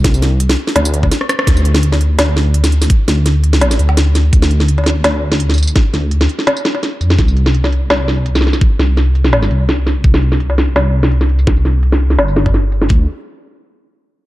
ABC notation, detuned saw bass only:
X:1
M:4/4
L:1/8
Q:"Swing 16ths" 1/4=168
K:Cdor
V:1 name="Detuned saw bass" clef=bass
C,,3 z D,,2 z2 | D,,4 D,,4 | z D,,4 D,,3 | D,,4 D,,4 |
z D,,2 z4 F,, | C,,4 C,,4 | z C,,4 C,,3 | C,,4 C,,4 |
C,,4 G,,,4 | D,, z6 z |]